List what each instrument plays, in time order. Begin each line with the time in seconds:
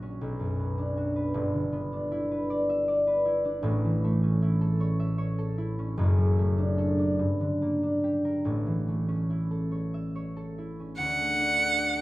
Already playing: harp A#1 A#2 F#3 F#4
0.02 harp C#4
0.21 harp B1
0.39 harp F#2
0.59 harp B3
0.78 harp D4
0.97 harp F#4
1.16 harp B4
1.34 harp G1 G2
1.54 harp D3
1.72 harp B3
1.92 harp D4
2.12 harp E4
2.31 harp B4
2.50 harp D5
2.69 harp E5
2.88 harp D5
3.07 harp B4
3.25 harp E4
3.45 harp D4
3.62 harp A1 A2
3.84 harp E3
4.04 harp A3
4.23 harp C#4
4.42 harp E4
4.61 harp A4
4.80 harp C#5
5.00 harp E5
5.18 harp C#5
5.38 harp A4
5.58 harp E4
5.79 harp C#4
5.97 harp F#1 F#2
6.18 harp F#3
6.38 harp A3
6.58 harp D4
6.78 harp A4
6.98 harp D4
7.19 harp G2
7.41 harp D3
7.62 harp A#3
7.83 harp D4
8.04 harp G4
8.25 harp A#4
8.45 harp A1 A2
8.66 harp E3
8.88 harp A3
9.08 harp C#4
9.30 harp E4
9.51 harp A4
9.72 harp C#5
9.94 harp E5
10.15 harp C#5
10.36 harp A4
10.58 harp E4
10.80 harp C#4
10.97 harp D2, violin F#5
11.18 harp A3
11.38 harp D4
11.58 harp A4
11.77 harp G4
11.96 harp A4